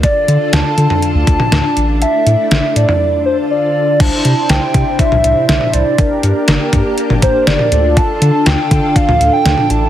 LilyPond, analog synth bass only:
\new Staff \with { instrumentName = "Analog synth bass" } { \clef bass \time 4/4 \key d \minor \tempo 4 = 121 r8 d16 r16 d,16 r16 d16 r8 d,16 d,16 r16 d,16 r16 a,,8~ | a,,16 r16 a,16 r16 a,,16 r16 a,16 r2 r16 | c,16 r16 c16 r16 c,16 r16 c16 r8 c,16 c,16 r16 c,16 r16 c,16 r16 | g,,16 r16 g,16 r16 g,,16 r16 g,16 r8 g,,16 g,,16 r16 g,,16 r16 d,8~ |
d,16 r16 d16 r16 d,16 r16 d16 r8 d,16 d,16 r16 d,16 r16 a,,8 | }